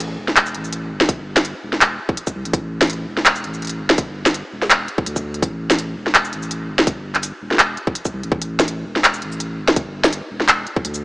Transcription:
0.00 0.17 A1 loud
0.00 closed hi-hat medium
0.18 0.56 E1 medium
0.28 snare soft
0.36 clap loud
0.36 closed hi-hat medium
0.46 shaker soft
0.55 0.92 A1 medium
0.55 closed hi-hat soft
0.64 shaker soft
0.73 closed hi-hat medium
0.91 1.54 G1 loud
1.01 snare medium
1.01 closed hi-hat soft
1.09 kick loud
1.09 closed hi-hat medium
1.37 clap soft
1.37 snare medium
1.37 closed hi-hat soft
1.37 shaker medium
1.45 closed hi-hat medium
1.63 1.98 E1 medium
1.73 snare soft
1.81 clap loud
1.81 closed hi-hat medium
2.09 kick loud
2.17 closed hi-hat medium
2.27 kick medium
2.27 shaker medium
2.35 2.44 C2 medium
2.45 2.53 A1 medium
2.45 closed hi-hat soft
2.53 3.07 A1 loud
2.53 kick loud
2.53 closed hi-hat medium
2.81 snare medium
2.81 closed hi-hat soft
2.81 shaker medium
2.87 closed hi-hat soft
2.90 closed hi-hat medium
2.93 closed hi-hat soft
3.08 3.46 E1 medium
3.17 snare soft
3.26 clap loud
3.26 closed hi-hat medium
3.36 shaker soft
3.44 3.82 A1 medium
3.44 closed hi-hat soft
3.54 shaker soft
3.62 closed hi-hat soft
3.65 closed hi-hat soft
3.67 closed hi-hat soft
3.69 closed hi-hat medium
3.80 4.43 G1 loud
3.90 snare medium
3.90 closed hi-hat soft
3.98 kick loud
3.98 closed hi-hat medium
4.26 clap soft
4.26 snare medium
4.26 closed hi-hat soft
4.26 shaker medium
4.34 closed hi-hat medium
4.52 4.87 E1 medium
4.62 snare soft
4.70 clap loud
4.70 closed hi-hat medium
4.88 closed hi-hat soft
4.98 kick loud
5.06 5.42 D2 medium
5.06 closed hi-hat medium
5.16 kick medium
5.16 shaker medium
5.34 closed hi-hat soft
5.42 5.96 A1 loud
5.42 kick loud
5.42 closed hi-hat medium
5.70 snare medium
5.70 closed hi-hat soft
5.70 shaker medium
5.79 closed hi-hat medium
5.97 6.34 E1 medium
6.07 snare soft
6.15 clap loud
6.15 closed hi-hat medium
6.25 shaker soft
6.33 6.71 A1 medium
6.33 closed hi-hat soft
6.43 shaker soft
6.51 closed hi-hat medium
6.69 7.32 G1 loud
6.79 snare medium
6.79 closed hi-hat soft
6.87 kick loud
6.87 closed hi-hat medium
7.15 clap soft
7.15 closed hi-hat soft
7.23 closed hi-hat medium
7.23 shaker medium
7.42 7.77 E1 medium
7.51 snare soft
7.53 snare soft
7.55 snare soft
7.57 clap loud
7.57 snare soft
7.57 closed hi-hat medium
7.77 closed hi-hat soft
7.87 kick loud
7.95 closed hi-hat medium
8.05 kick medium
8.05 shaker medium
8.13 8.22 C2 medium
8.23 8.31 A1 medium
8.23 closed hi-hat soft
8.32 8.85 A1 loud
8.32 kick loud
8.42 closed hi-hat medium
8.60 snare medium
8.60 closed hi-hat soft
8.60 shaker medium
8.68 closed hi-hat medium
8.86 9.24 E1 medium
8.96 snare soft
9.04 clap loud
9.04 closed hi-hat medium
9.14 shaker soft
9.22 9.60 A1 medium
9.22 closed hi-hat soft
9.32 shaker soft
9.40 closed hi-hat medium
9.59 10.21 G1 loud
9.68 snare medium
9.68 closed hi-hat soft
9.76 kick loud
9.76 closed hi-hat medium
10.04 clap soft
10.04 snare medium
10.04 closed hi-hat soft
10.04 shaker medium
10.13 closed hi-hat medium
10.31 10.66 E1 medium
10.40 snare soft
10.48 clap loud
10.48 closed hi-hat medium
10.67 closed hi-hat soft
10.76 kick loud
10.85 11.04 D2 medium
10.85 closed hi-hat medium
10.94 shaker medium

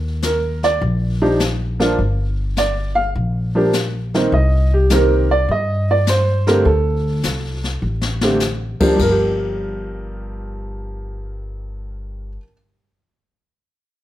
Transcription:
0.00 0.78 D#2 medium
0.22 0.63 A#4 medium
0.22 snare medium
0.22 hi-hat pedal medium
0.63 0.82 D5 medium
0.63 snare soft
0.81 1.95 A#1 medium
0.81 brush sweep soft
0.81 kick soft
1.22 1.39 F3 medium
1.22 1.39 D4 medium
1.22 1.39 D#4 medium
1.22 1.39 G4 medium
1.40 snare medium
1.40 hi-hat pedal medium
1.80 1.97 F3 medium
1.80 1.97 A#3 medium
1.80 1.97 D4 medium
1.80 1.97 F4 medium
1.80 snare soft
1.99 3.12 G1 medium
1.99 brush sweep soft
1.99 kick soft
2.57 2.96 D5 medium
2.57 snare medium
2.57 hi-hat pedal soft
2.95 3.07 F5 medium
3.15 4.28 A#1 medium
3.15 brush sweep soft
3.15 kick soft
3.55 3.72 F3 medium
3.55 3.73 A#3 medium
3.55 3.72 D4 medium
3.55 3.73 G4 medium
3.73 snare medium
3.73 hi-hat pedal medium
4.14 4.31 D#3 medium
4.14 4.31 A#3 medium
4.14 4.32 C4 medium
4.14 4.32 D#4 medium
4.14 snare soft
4.32 5.45 C2 loud
4.32 4.72 D#5 medium
4.32 brush sweep soft
4.32 kick soft
4.74 4.91 G4 medium
4.90 5.27 D#3 medium
4.90 5.27 A#3 medium
4.90 5.27 C4 medium
4.90 5.27 G4 medium
4.90 5.31 A#4 medium
4.90 snare medium
4.90 hi-hat pedal medium
5.31 5.49 D5 medium
5.49 6.62 G2 medium
5.49 5.89 D#5 medium
5.49 brush sweep soft
5.49 kick soft
5.91 6.08 D5 medium
6.07 6.47 C5 medium
6.07 snare medium
6.07 hi-hat pedal medium
6.47 6.65 D3 medium
6.47 6.64 A3 medium
6.47 6.65 C4 medium
6.47 6.65 G4 medium
6.47 6.65 A#4 medium
6.47 snare soft
6.65 7.20 D2 medium
6.65 7.79 A4 medium
6.65 brush sweep soft
6.65 kick soft
7.23 7.79 C2 medium
7.23 snare medium
7.23 hi-hat pedal medium
7.64 snare soft
7.82 8.77 A1 medium
8.01 snare medium
8.21 8.39 D3 medium
8.21 8.40 A3 medium
8.21 8.40 C4 soft
8.21 8.40 G4 medium
8.21 snare medium
8.40 snare medium
8.40 hi-hat pedal medium
8.80 8.94 F3 medium
8.80 8.97 A#3 medium
8.80 8.98 D4 medium
8.80 8.98 G4 medium
8.80 muted upright bass stroke soft
8.80 kick medium
8.80 crash medium
8.87 12.27 G2 medium
8.95 12.36 G1 medium
8.95 12.36 F3 medium
8.95 kick medium
8.99 12.38 A#4 medium
8.99 crash medium
9.03 12.44 A#3 soft
9.11 12.52 G4 medium

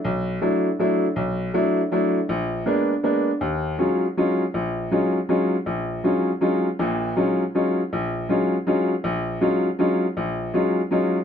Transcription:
0.04 0.37 B1 medium
0.41 0.67 F#3 medium
0.41 0.67 A3 soft
0.41 0.67 D4 soft
0.41 0.67 E4 medium
0.79 1.05 F#3 medium
0.79 1.05 A3 soft
0.79 1.05 D4 soft
0.79 1.05 E4 medium
1.16 1.49 B1 medium
1.54 1.79 F#3 medium
1.54 1.80 A3 soft
1.54 1.80 D4 soft
1.54 1.80 E4 medium
1.92 2.17 F#3 medium
1.92 2.17 A3 soft
1.92 2.17 D4 soft
1.92 2.18 E4 medium
2.29 2.61 A#1 medium
2.66 2.92 G#3 medium
2.66 2.92 A#3 soft
2.66 2.92 B3 soft
2.66 2.92 D4 medium
3.03 3.29 G#3 soft
3.03 3.29 A#3 soft
3.03 3.29 B3 soft
3.03 3.30 D4 medium
3.41 3.74 D#2 medium
3.78 4.04 F#3 medium
3.78 4.04 G#3 soft
3.78 4.04 C#4 soft
3.78 4.05 D#4 soft
3.78 4.05 F4 medium
4.17 4.42 F#3 medium
4.17 4.42 G#3 soft
4.17 4.43 C#4 soft
4.17 4.43 D#4 soft
4.17 4.43 F4 medium
4.54 4.86 A#1 medium
4.91 5.17 F#3 medium
4.91 5.17 G#3 soft
4.91 5.17 C#4 soft
4.91 5.17 D#4 soft
4.91 5.17 F4 medium
5.29 5.54 F#3 medium
5.29 5.54 G#3 soft
5.29 5.54 C#4 medium
5.29 5.54 D#4 soft
5.29 5.55 F4 medium
5.66 5.99 A#1 medium
6.04 6.29 F#3 medium
6.04 6.29 G#3 soft
6.04 6.29 C#4 soft
6.04 6.30 D#4 soft
6.04 6.30 F4 medium
6.41 6.67 F#3 medium
6.41 6.67 G#3 soft
6.41 6.67 C#4 soft
6.41 6.67 D#4 soft
6.41 6.67 F4 medium
6.79 7.11 A#1 medium
6.79 7.11 A#2 medium
7.16 7.42 F#3 medium
7.16 7.42 G#3 soft
7.16 7.42 C#4 medium
7.16 7.42 D#4 soft
7.16 7.42 F4 medium
7.55 7.80 F#3 soft
7.55 7.80 G#3 soft
7.55 7.80 C#4 soft
7.55 7.80 D#4 soft
7.55 7.80 F4 medium
7.93 8.24 A#1 medium
8.29 8.54 F#3 medium
8.29 8.54 G#3 medium
8.29 8.55 C#4 soft
8.29 8.55 D#4 soft
8.29 8.55 F4 medium
8.67 8.92 F#3 medium
8.67 8.92 G#3 medium
8.67 8.92 C#4 soft
8.67 8.92 D#4 soft
8.67 8.92 F4 medium
9.04 9.36 A#1 medium
9.41 9.67 F#3 medium
9.41 9.67 G#3 soft
9.41 9.67 C#4 medium
9.41 9.67 D#4 soft
9.41 9.67 F4 medium
9.79 10.04 F#3 medium
9.79 10.04 G#3 soft
9.79 10.04 C#4 soft
9.79 10.05 D#4 medium
9.79 10.04 F4 medium
10.17 10.49 A#1 medium
10.54 10.79 F#3 medium
10.54 10.79 G#3 medium
10.54 10.79 C#4 soft
10.54 10.79 D#4 medium
10.54 10.79 F4 medium
10.91 11.16 F#3 medium
10.91 11.17 G#3 medium
10.91 11.17 C#4 soft
10.91 11.17 D#4 medium
10.91 11.17 F4 medium

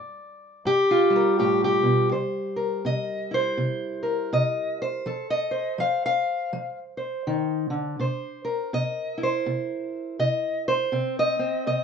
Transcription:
0.00 0.59 G2 medium
0.00 0.65 D5 soft
0.65 1.32 G2 medium
0.65 1.38 G4 loud
0.91 2.12 F4 medium
1.10 5.06 G3 soft
1.16 1.39 A#4 medium
1.39 1.82 A2 medium
1.39 1.63 G4 medium
1.64 2.12 G4 medium
1.83 2.11 B2 medium
2.12 2.79 C3 medium
2.12 2.86 C5 soft
2.56 4.02 A#4 soft
2.85 3.52 C3 medium
2.85 3.34 D#5 medium
3.31 5.03 E4 soft
3.31 4.32 C5 medium
3.57 4.25 C3 medium
4.03 5.02 A#4 soft
4.33 5.00 C3 medium
4.33 4.81 D#5 medium
4.82 5.30 C5 medium
5.06 5.73 F3 medium
5.06 7.96 A4 soft
5.30 5.79 D#5 medium
5.51 6.97 C5 soft
5.78 6.46 F3 medium
5.78 6.04 F5 medium
6.06 6.78 F5 medium
6.53 7.20 F3 medium
6.97 8.00 C5 soft
7.27 7.70 D#3 medium
7.70 7.99 D3 medium
8.00 8.67 C3 medium
8.00 8.74 C5 soft
8.45 10.90 A#4 soft
8.73 9.41 C3 medium
8.73 9.22 D#5 loud
9.18 10.90 E4 soft
9.23 10.19 C5 medium
9.46 10.14 C3 medium
10.19 10.87 C3 medium
10.19 10.68 D#5 medium
10.68 11.17 C5 medium
10.92 11.60 C3 medium
10.92 11.39 C4 medium
11.19 11.66 D#5 medium
11.39 11.84 C4 soft
11.67 11.84 C3 medium
11.67 11.84 D#5 medium

